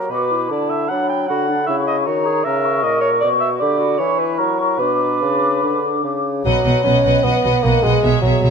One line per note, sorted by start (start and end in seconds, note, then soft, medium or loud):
0.00 0.12 A#4 soft
0.10 0.47 B2 soft
0.10 0.29 F#4 soft
0.10 0.50 B4 medium
0.10 0.48 D6 soft
0.31 0.89 E4 soft
0.49 0.90 D3 soft
0.49 0.71 D5 medium
0.49 0.90 A5 soft
0.69 0.90 E5 medium
0.89 1.29 F#3 soft
0.89 1.28 D4 soft
0.89 1.08 F#5 medium
0.89 1.27 B5 soft
1.09 1.28 G5 medium
1.28 1.68 D3 soft
1.28 1.51 F#4 soft
1.28 1.66 F#5 medium
1.28 1.67 B5 soft
1.49 1.70 D4 soft
1.67 2.09 C#3 soft
1.67 2.07 E4 soft
1.67 1.76 E5 medium
1.67 2.06 C#6 soft
1.87 1.96 D#5 medium
2.05 2.45 D#3 soft
2.05 2.27 F#4 soft
2.05 2.45 C#5 medium
2.05 2.44 A#5 soft
2.26 2.46 G#4 soft
2.44 2.85 C#3 soft
2.44 2.83 A#4 soft
2.44 2.84 E5 medium
2.44 2.64 A#5 soft
2.64 3.60 C#6 soft
2.83 3.21 A#2 soft
2.83 3.24 A#4 soft
2.83 3.00 D#5 medium
3.01 3.10 C#5 medium
3.20 3.60 B2 soft
3.20 3.62 F#4 soft
3.20 3.29 D5 medium
3.40 3.49 E5 medium
3.59 3.98 D3 medium
3.59 3.80 G4 soft
3.59 4.00 D5 medium
3.59 3.99 B5 soft
3.78 4.01 F#4 soft
3.98 4.38 E3 medium
3.98 4.80 E4 soft
3.98 4.20 C#5 medium
3.98 4.36 C#6 soft
4.19 4.40 B4 medium
4.37 4.81 F#3 soft
4.37 4.59 A#4 medium
4.37 4.78 C#6 soft
4.60 4.80 A#4 medium
4.78 5.21 B2 soft
4.78 6.22 D4 soft
4.78 6.04 B4 medium
4.78 6.25 D6 soft
5.22 5.62 C#3 soft
5.63 6.03 D3 soft
6.04 6.44 C#3 soft
6.45 6.53 B1 soft
6.45 6.53 B2 soft
6.45 6.82 F#3 soft
6.45 6.63 B4 soft
6.45 6.64 D#5 soft
6.45 6.64 F#5 soft
6.64 6.73 B1 soft
6.64 6.73 B2 soft
6.64 6.83 B4 soft
6.64 6.83 D#5 soft
6.64 6.84 F#5 soft
6.84 6.92 B1 soft
6.84 6.93 B2 soft
6.84 7.25 C#4 medium
6.84 7.04 B4 soft
6.84 7.04 D#5 soft
6.84 7.03 F#5 soft
7.04 7.12 B1 soft
7.04 7.13 B2 soft
7.04 7.24 B4 soft
7.04 7.23 D#5 soft
7.04 7.24 F#5 soft
7.23 7.31 B1 soft
7.23 7.32 B2 soft
7.23 7.65 B3 medium
7.23 7.43 B4 soft
7.23 7.43 D#5 soft
7.23 7.43 F#5 soft
7.44 7.52 B1 soft
7.44 7.52 B2 soft
7.44 7.62 B4 soft
7.44 7.63 D#5 soft
7.44 7.62 F#5 soft
7.63 7.72 B1 soft
7.63 7.72 B2 soft
7.63 7.84 A#3 medium
7.63 7.82 B4 soft
7.63 7.83 D#5 soft
7.63 7.82 F#5 soft
7.83 7.92 B1 soft
7.83 7.91 B2 soft
7.83 8.21 G#3 medium
7.83 8.03 B4 soft
7.83 8.04 D#5 soft
7.83 8.03 F#5 soft
8.04 8.11 B1 soft
8.04 8.11 B2 soft
8.04 8.22 G#4 soft
8.04 8.23 C#5 soft
8.04 8.23 E5 soft
8.22 8.32 B1 soft
8.22 8.31 B2 soft
8.22 8.50 F#3 soft
8.22 8.42 G#4 soft
8.22 8.42 C#5 soft
8.22 8.42 E5 soft
8.42 8.50 B1 soft
8.42 8.50 B2 soft
8.42 8.50 G#4 soft
8.42 8.50 C#5 soft
8.42 8.50 E5 soft